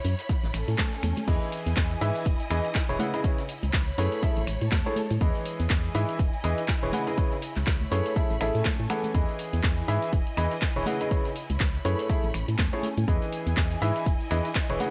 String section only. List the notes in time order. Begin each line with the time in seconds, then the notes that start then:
Already playing: E4 C#5 B5
0.29 C#4
0.56 A4
0.74 G#5
1.28 E4
1.59 D#5
3.69 C#5 B5
4.23 G#3
4.68 A5
5.21 E4
5.46 G#5
5.52 D#5
7.58 C#5
7.63 B5
8.16 C#4
8.51 A4
8.61 G#5
9.14 E4
9.80 D#5
11.56 C#5 B5
12.10 C#4
12.55 A4 G#5
13.08 E4
13.59 D#5